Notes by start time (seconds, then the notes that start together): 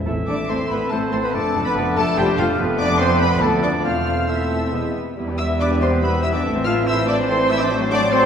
0.06 A1 A2 E3 A3 C4 E4 A4 E5
0.27 A1 A2 E3 A3 D4 E4 A4 D5 D6
0.48 A1 A2 E3 A3 C4 E4 A4 C5 C6
0.70 A1 A2 E3 A3 B3 E4 A4 B4 B5
0.90 A1 A2 E3 A3 C4 E4 A4 C5 A5
1.11 A1 A2 E3 A3 C4 E4 A4 C5 C6
1.22 B3 B4 B5
1.32 F1 F2 F3 A3 D4 A4 D5 A5
1.55 F1 F2 F3 A3 D4 A4
1.64 B3 B4 B5
1.76 F1 F2 F3 A3 D4 A4 D5
1.96 F1 F2 F3 A3 D4 A4 A5
2.17 F1 F2 F3 G3 A3 D4 G4 A4 C5 G5
2.37 F1 F2 F3 A3 D4 F4 A4 F5
2.58 F1 F2 F3 A3 B3 D4 A4 B4
2.79 D4 D5 D6
2.98 C4 C5 C6
3.20 B3 B4 B5
3.41 D2 F3 A3 B3 D4 A4 D5 A5
3.62 D4 D5 D6
3.83 E1 E2 A3 C4 F4 A4 C5 F5 F6
4.28 A3 C4 E4 A4 E5 E6
4.72 E1 E2 E3 G#3 B3 B4
5.16 E1 E2 G3 B3 E4 B4
5.28 E3 B3 G4
5.38 G3 E4 B4 E5 E6
5.48 E3 B3 G4
5.59 G3 D4 E4 B4 D5 D6
5.69 E3 B3 G4
5.80 G3 C4 E4 B4 C5 C6
5.91 E3 B3 G4
6.01 G3 B3 E4 B4 E5 B5
6.11 E3 B3 G4
6.21 G3 E4 B4 E5 E6
6.33 E3 B3 D4 G4 D5 D6
6.43 A1 A2 E3 A3 C4 E4 A4
6.54 E3 C4 C5
6.64 A3 E4 F4 A4 F5 F6
6.76 E3 C4 C5
6.86 A3 E4 A4 C5 E5 E6
6.96 E3 C4 C5
7.07 A3 D4 E4 A4 D5 D6
7.17 E3 C4 C5
7.28 A3 C4 E4 A4 C5 C6
7.39 E3 C4 C5
7.48 A3 E4 A4 E5 E6
7.60 E3 C4 D4 C5 D5 D6
7.70 F#3 A3 C4 F#4 A4
7.81 F#3 A3 D4 F#4
7.90 A3 C4 D4 F#4 A4 D5 D6
8.01 F#3 A3 D4 F#4
8.11 F#3 A3 C4 F#4 A4 C5 C6
8.21 F#3 A3 F#4